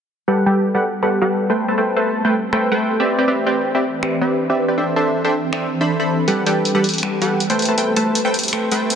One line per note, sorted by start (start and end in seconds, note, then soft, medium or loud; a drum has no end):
0.28 1.58 G3 medium
0.28 0.44 G3 medium
0.28 1.58 B3 medium
0.28 1.58 F#4 medium
0.28 0.44 G4 medium
0.28 1.58 A4 medium
0.28 0.44 A4 medium
0.28 0.44 B4 medium
0.28 0.44 F#5 medium
0.46 0.72 G3 medium
0.46 0.72 G4 medium
0.46 0.72 A4 medium
0.46 0.72 B4 medium
0.46 0.72 G5 loud
0.75 0.84 G3 medium
0.75 0.84 G4 medium
0.75 0.84 A4 medium
0.75 0.84 B4 medium
0.75 0.84 F#5 loud
1.03 1.19 G3 medium
1.03 1.19 G4 medium
1.03 1.19 A4 medium
1.03 1.19 B4 medium
1.03 1.19 F#5 medium
1.03 finger snap medium
1.21 1.47 G3 medium
1.21 1.47 G4 medium
1.21 1.47 A4 medium
1.21 1.47 B4 medium
1.21 1.47 F#5 loud
1.50 1.66 A3 medium
1.50 1.66 A4 medium
1.50 1.66 B4 medium
1.50 1.66 C5 medium
1.50 1.66 G5 loud
1.59 3.08 A3 medium
1.59 3.08 C4 medium
1.59 3.08 G4 medium
1.59 4.75 B4 medium
1.68 1.76 A3 medium
1.68 1.76 A4 medium
1.68 1.76 B4 medium
1.68 1.76 C5 medium
1.68 1.76 A5 medium
1.78 1.94 A3 medium
1.78 1.94 A4 medium
1.78 1.94 B4 medium
1.78 1.94 C5 medium
1.78 1.94 G5 medium
1.96 2.22 A3 loud
1.96 2.22 A4 medium
1.96 2.22 B4 medium
1.96 2.22 C5 medium
1.96 2.22 A5 loud
2.25 2.34 A3 medium
2.25 2.34 A4 medium
2.25 2.34 B4 medium
2.25 2.34 C5 medium
2.25 2.34 G5 loud
2.53 2.69 A3 medium
2.53 2.69 A4 medium
2.53 2.69 B4 medium
2.53 2.69 C5 medium
2.53 2.69 G5 medium
2.53 finger snap loud
2.72 2.98 A3 medium
2.72 2.98 A4 medium
2.72 2.98 B4 medium
2.72 2.98 C5 medium
2.72 2.98 G5 loud
3.00 3.16 C4 medium
3.00 3.16 G4 medium
3.00 3.16 B4 medium
3.00 3.16 D5 medium
3.00 3.16 E5 medium
3.09 4.76 E3 medium
3.09 6.25 C4 medium
3.09 4.76 D4 medium
3.18 3.26 C4 medium
3.18 3.26 G4 medium
3.18 3.26 B4 medium
3.18 3.26 D5 medium
3.18 3.26 G5 medium
3.28 3.44 C4 medium
3.28 3.44 G4 medium
3.28 3.44 B4 medium
3.28 3.44 D5 medium
3.28 3.44 E5 medium
3.46 3.72 C4 loud
3.46 3.72 G4 medium
3.46 3.72 B4 medium
3.46 3.72 D5 medium
3.46 3.72 G5 loud
3.75 3.84 C4 medium
3.75 3.84 G4 medium
3.75 3.84 B4 medium
3.75 3.84 D5 medium
3.75 3.84 E5 loud
4.03 4.19 C4 medium
4.03 4.19 G4 medium
4.03 4.19 B4 medium
4.03 4.19 D5 medium
4.03 4.19 E5 medium
4.03 finger snap medium
4.21 4.47 C4 medium
4.21 4.47 G4 medium
4.21 4.47 B4 medium
4.21 4.47 D5 medium
4.21 4.47 E5 loud
4.50 4.66 C4 medium
4.50 4.66 G4 medium
4.50 4.66 B4 medium
4.50 4.66 D5 medium
4.50 4.66 E5 loud
4.68 4.76 C4 medium
4.68 4.76 G4 medium
4.68 4.76 B4 medium
4.68 4.76 D5 medium
4.68 4.76 G5 medium
4.78 6.26 E3 medium
4.78 4.94 D4 medium
4.78 6.26 D4 medium
4.78 6.26 G4 medium
4.78 4.94 A4 medium
4.78 4.94 C5 medium
4.78 4.94 E5 medium
4.78 4.94 G5 medium
4.96 5.22 D4 medium
4.96 5.22 A4 medium
4.96 5.22 C5 medium
4.96 5.22 E5 medium
4.96 5.22 A5 loud
5.25 5.34 D4 medium
5.25 5.34 A4 medium
5.25 5.34 C5 medium
5.25 5.34 E5 medium
5.25 5.34 G5 loud
5.53 5.69 D4 medium
5.53 5.69 A4 medium
5.53 5.69 C5 medium
5.53 5.69 E5 medium
5.53 5.69 G5 medium
5.53 finger snap medium
5.81 5.97 D4 medium
5.81 5.97 A4 medium
5.81 5.97 C5 medium
5.81 5.97 E5 medium
5.81 5.97 B5 medium
6.00 6.26 D4 medium
6.00 6.26 A4 medium
6.00 6.26 C5 medium
6.00 6.26 E5 medium
6.00 6.26 B5 medium
6.28 6.44 G3 medium
6.28 7.58 G3 medium
6.28 7.58 B3 medium
6.28 7.58 F#4 medium
6.28 6.44 G4 medium
6.28 6.44 A4 medium
6.28 7.58 A4 medium
6.28 6.44 B4 medium
6.28 6.44 F#5 medium
6.28 closed hi-hat medium
6.46 6.72 G3 loud
6.46 6.72 G4 medium
6.46 6.72 A4 medium
6.46 6.72 B4 medium
6.46 6.72 G5 loud
6.46 closed hi-hat medium
6.65 closed hi-hat medium
6.75 6.84 G3 medium
6.75 6.84 G4 medium
6.75 6.84 A4 medium
6.75 6.84 B4 medium
6.75 6.84 F#5 loud
6.84 closed hi-hat soft
6.89 closed hi-hat medium
6.94 closed hi-hat soft
6.98 closed hi-hat medium
7.03 7.19 G3 medium
7.03 7.19 G4 medium
7.03 7.19 A4 medium
7.03 7.19 B4 medium
7.03 7.19 F#5 medium
7.03 finger snap medium
7.03 closed hi-hat medium
7.22 7.48 G3 medium
7.22 7.48 G4 medium
7.22 7.48 A4 medium
7.22 7.47 B4 medium
7.22 7.48 F#5 loud
7.22 closed hi-hat medium
7.40 closed hi-hat medium
7.50 7.66 A3 medium
7.50 7.66 A4 medium
7.50 7.66 B4 medium
7.50 7.66 C5 medium
7.50 7.66 G5 loud
7.50 closed hi-hat medium
7.59 8.95 A3 medium
7.59 8.95 C4 medium
7.59 8.95 G4 medium
7.59 8.95 B4 medium
7.59 closed hi-hat soft
7.62 closed hi-hat medium
7.65 7.76 A3 medium
7.65 7.76 A4 medium
7.65 7.76 B4 medium
7.65 7.76 C5 medium
7.65 7.76 A5 medium
7.65 closed hi-hat medium
7.78 7.94 A3 medium
7.78 7.94 A4 medium
7.78 7.94 B4 medium
7.78 7.94 C5 medium
7.78 7.94 G5 medium
7.78 closed hi-hat medium
7.96 8.22 A3 medium
7.96 8.22 A4 medium
7.96 8.22 B4 medium
7.96 8.23 C5 medium
7.96 8.22 A5 loud
7.96 closed hi-hat medium
8.15 closed hi-hat medium
8.25 8.34 A3 medium
8.25 8.34 A4 medium
8.25 8.34 B4 medium
8.25 8.34 C5 medium
8.25 8.34 G5 loud
8.34 closed hi-hat soft
8.39 closed hi-hat medium
8.44 closed hi-hat soft
8.48 closed hi-hat medium
8.53 8.69 A3 medium
8.53 8.69 A4 medium
8.53 8.69 B4 medium
8.53 8.69 C5 medium
8.53 8.69 G5 medium
8.53 finger snap medium
8.72 8.95 A3 medium
8.72 8.95 A4 medium
8.72 8.95 B4 medium
8.72 8.95 C5 medium
8.72 8.95 G5 loud
8.72 closed hi-hat medium
8.90 closed hi-hat medium